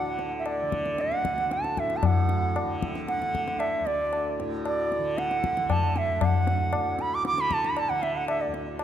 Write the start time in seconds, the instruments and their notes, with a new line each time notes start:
Already playing: tanpura D2 A2, bansuri F#5
0.00 tanpura D3
0.19 tabla te
0.39 bansuri E5
0.46 bansuri D5, tabla na
0.62 tanpura D3
0.72 tabla ke
0.86 tabla te
0.98 bansuri F#5, tabla te
1.12 tabla te
1.21 tanpura D2, tabla ke
1.38 tabla te
1.51 bansuri A5, tabla te
1.64 tabla te
1.77 tanpura A2, bansuri E5, tabla ke
1.90 tabla te
1.97 bansuri A5
2.03 tanpura A2, bansuri F#5, tabla na, tabla ge
2.29 tabla te
2.56 tabla na
2.63 tanpura D3
2.82 tabla ke
2.95 tabla te
3.08 bansuri F#5, tabla te
3.22 tanpura D3, tabla te
3.35 tabla ke
3.48 tabla te
3.59 bansuri E5, tabla na
3.81 tanpura D2
3.86 bansuri D5, tabla te
4.13 tabla na
4.40 tanpura A2, tabla te
4.66 bansuri D5, tabla na
4.92 tabla te
4.99 tanpura D3
5.18 bansuri F#5, tabla te
5.31 tabla te
5.44 tabla ke
5.57 tanpura D3, tabla te
5.70 bansuri A5, tabla na, tabla ge
5.96 bansuri E5, tabla te
6.16 tanpura D2
6.21 bansuri F#5, tabla na, tabla ge
6.47 tabla te
6.73 tanpura A2, tabla na
6.99 bansuri B5, tabla te
7.15 bansuri D6
7.25 bansuri D6, tabla te
7.32 tanpura D3
7.38 bansuri B5, tabla te
7.51 bansuri A5, tabla ke
7.65 bansuri B5, tabla te
7.77 bansuri A5, tabla na
7.89 tanpura D3, bansuri F#5
8.03 bansuri E5, tabla te
8.16 bansuri F#5
8.28 bansuri E5, tabla na
8.41 bansuri D5
8.47 tanpura D2
8.54 tabla te
8.79 bansuri D5, tabla na